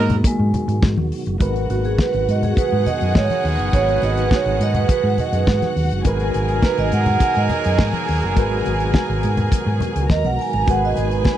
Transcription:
Already playing: G#2 B2 D#3 F#3 G#3 A#3 B3 D#4 F#4 G#4 A#4 D#5
0.10 closed hi-hat, low conga
0.24 G#3, kick, closed hi-hat, muted conga
0.39 G#2
0.54 closed hi-hat, muted conga, low conga
0.68 G#2, closed hi-hat
0.82 G#2, kick, snare, high conga
0.97 D#2, high conga
1.12 open hi-hat
1.26 F#1, closed hi-hat
1.39 G#1 B2 D#3 F#3 G#3 F#4 A#4 B4 F#5, kick, closed hi-hat, muted conga
1.56 closed hi-hat
1.70 G#1 F#4, closed hi-hat
1.85 G#4, closed hi-hat
1.98 B4, kick, snare, high conga
2.14 G#1, closed hi-hat
2.29 G#2 D#5, closed hi-hat
2.43 G#4, closed hi-hat, low conga
2.57 D#3 B3 G#4 B4, kick, closed hi-hat, muted conga
2.72 G#2
2.86 D#5, closed hi-hat, muted conga, low conga
3.01 F#2, closed hi-hat
3.15 G#2 C#5, kick, snare, high conga
3.30 snare, closed hi-hat, high conga
3.44 D#2, open hi-hat
3.59 F#1, closed hi-hat
3.72 G#1 G#3 F#4 G#4 B4 C#5, kick, closed hi-hat, muted conga
3.88 closed hi-hat
4.02 G#1 D#5, closed hi-hat, muted conga
4.17 B4, closed hi-hat
4.31 C#5, kick, snare, high conga
4.46 G#1
4.60 G#2 D#5, closed hi-hat
4.74 B4, closed hi-hat, low conga
4.89 B4, kick, closed hi-hat, muted conga
5.04 G#2
5.18 D#5, closed hi-hat, muted conga, low conga
5.33 F#2 B4, closed hi-hat
5.47 G#2, kick, snare, high conga
5.62 snare, closed hi-hat, high conga
5.76 D#2, open hi-hat
5.91 F#1, closed hi-hat
6.04 G#1 F#3 G#3 D#4 F#4 G#4 A#4 B4 G#5, kick, closed hi-hat, muted conga
6.20 closed hi-hat
6.34 G#1, closed hi-hat
6.48 closed hi-hat
6.62 B4, kick, snare, high conga
6.77 G#1 D#5, closed hi-hat
6.92 G#2 F#5, closed hi-hat
7.06 closed hi-hat, low conga
7.20 F#5, muted fingered electric bass stroke, kick, closed hi-hat, muted conga
7.35 G#2 D#5, closed hi-hat
7.50 D#5, closed hi-hat, muted conga, low conga
7.64 F#2, closed hi-hat
7.78 G#2, kick, snare, high conga
7.93 closed hi-hat, high conga
8.08 D#2, open hi-hat
8.22 F#1, closed hi-hat
8.36 G#1 G#3 F#4 A#4 B4, kick, closed hi-hat, muted conga
8.65 G#1, closed hi-hat, muted conga
8.80 closed hi-hat
8.94 kick, snare, high conga
9.09 G#1
9.23 G#2, closed hi-hat
9.37 closed hi-hat, low conga
9.52 kick, closed hi-hat, muted conga
9.66 G#2
9.80 closed hi-hat, muted conga, low conga
9.96 C#2, closed hi-hat
10.10 D#2 A#4 D#5 A#5, kick, snare, high conga
10.24 B1 F#5, closed hi-hat, high conga
10.39 G#5, open hi-hat
10.53 G#1, closed hi-hat
10.67 G#1 F#3 G#3 D#4 F#4 G#4 A#4 B4 F#5 G#5, kick, closed hi-hat, muted conga
10.85 D#5
10.96 G#1 B4, closed hi-hat, muted conga
11.11 closed hi-hat
11.25 kick, snare, high conga

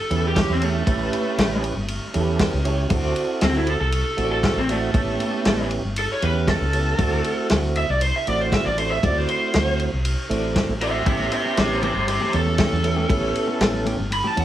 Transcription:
Already playing: A4
0.10 E2 C#4 E4 G4 A4 B4 C#5, ride
0.28 G4
0.36 kick, snare, ride
0.49 E2 C4
0.60 A3 C#4 E4 G4 A4 C#5, ride
0.86 A1 C#4 E4 G4 A4 B4, kick, ride
1.13 ride
1.38 A1, snare, ride
1.64 ride
1.77 G1
1.88 ride
2.14 E2 C#4 E4 G4 A4 B4, ride
2.39 kick, snare, ride
2.53 C#2
2.64 C#4 E4 G4 A4 C#5, ride
2.89 D2 C4 E4 F#4 A4 C5 D5, kick, ride
3.16 ride
3.41 D2 C4, snare, ride
3.56 E4
3.67 A4, ride
3.81 C2 A4
3.92 ride
4.17 A1 C4 E4 F#4 A4 C5 D5, ride
4.32 A4
4.43 kick, snare, ride
4.56 A1 C4
4.68 A3 C4 E4 F#4 A4 C5 D5, ride
4.93 A1 B3 C#4 E4 G4 A4 C#5, kick, ride
5.20 ride
5.45 A1, snare, ride
5.71 ride
5.85 G1
5.96 A4, ride
6.12 C#5
6.20 E2 B3 C#4 E4 G4 A4 B4 C#5, ride
6.48 A4, kick, snare, ride
6.61 C#2
6.72 B3 C#4 E4 G4 A4 C#5, ride
6.98 D2 A3 C4 E4 F#4 C5 D5, kick, ride
7.24 ride
7.50 D2, snare, ride
7.75 E5, ride
7.90 C2 D5
8.01 C5, ride
8.16 E5
8.27 A1 A3 C4 E4 F#4 C5 D5, ride
8.41 C5
8.52 E5, kick, snare, ride
8.65 A1 D5
8.78 A3 C4 E4 F#4 A4 C5 D5, ride
8.91 E5
9.03 D2 A3 C4 E4 F#4 C5 D5, kick, ride
9.18 C5
9.29 C5, ride
9.54 D2, snare, ride
9.79 ride
9.93 C2
10.05 ride
10.29 A1 A3 C4 E4 F#4 A4 C5 D5, ride
10.56 kick, snare, ride
10.68 A1
10.80 A3 C4 E4 F#4 C5 D5 E5, ride
11.05 A1 E3 A3 B3 C#4 E4 G4 A4 C5 C#5 E5, kick, ride
11.19 muted clean electric guitar stroke
11.31 C5 E5, ride
11.45 muted clean electric guitar stroke
11.57 A1 G4 C5, snare, ride
11.70 muted clean electric guitar stroke
11.82 E3 A3 C#4 G4 C5, ride
11.95 G1, muted clean electric guitar stroke
12.07 G4 C5, muted clean electric guitar stroke, ride
12.21 E3 A3 C#4 G4
12.33 E2 B3 C#4 E4 G4 A4 C#5, muted clean electric guitar stroke, ride
12.46 muted clean electric guitar stroke
12.58 E3 A3 C#4 G4, kick, snare, ride
12.72 E2
12.83 B3 C#4 E4 G4 A4 C#5, muted clean electric guitar stroke, ride
12.96 A3 C#4 G4
13.09 A1 B3 C#4 E4 G4 A4 C#5, kick, ride
13.21 muted clean electric guitar stroke
13.35 ride
13.47 muted clean electric guitar stroke
13.60 A1, snare, ride
13.73 muted clean electric guitar stroke
13.85 E3 A3 C#4 G4, ride
13.99 G1, muted clean electric guitar stroke
14.10 B5, muted clean electric guitar stroke, ride
14.24 E3 A3 C#4 G4 A5
14.35 E2 B3 C#4 E4 G4 A4 C#5, ride
14.40 F#5

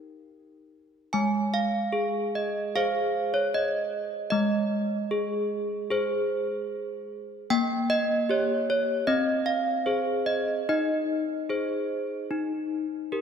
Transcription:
Already playing: D#4 G4 A#4 G5
1.13 G#3 G#5
1.54 F5
1.93 G#4
2.35 D#5
2.75 G#4 C5 F5
3.34 C#5
3.54 D#5
4.30 G#3 D#5
5.11 G#4
5.91 G#4 C5
7.50 A#3 G5
7.90 D#5
8.29 G4 C#5
8.70 C#5
9.07 C4 D#5
9.46 F5
9.86 G#4 C5
10.26 D#5
10.69 D#4 D#5
11.49 G#4 C5
12.31 D#4
13.12 G4 A#4

